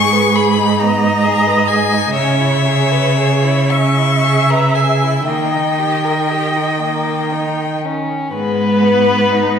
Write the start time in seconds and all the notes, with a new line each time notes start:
Already playing: G#2 G#4 C#6
0.12 B4
0.34 G#4 B5
0.58 D#4
0.79 B3 D#5 A#5
1.03 D#4
1.24 G#4
1.47 B4
1.68 G#4 G#5
1.93 D#4
2.15 C#3 C#4 C#5 E5
2.40 E4
2.66 G#4
2.92 B4
3.17 G#4
3.44 E4
3.70 C#4 E5 C#6
3.98 E4
4.24 G#4
4.50 B4 A#5
4.75 G#4 G#5
5.03 E4
5.27 D#3 A#3 D#5 G5
5.54 D#4
5.78 G4
6.05 A#4
6.30 G4
6.56 D#4
6.81 A#3
7.32 D#4
7.85 C#4
8.33 G#2 G#3 B3 B4
8.83 B3
9.31 D#4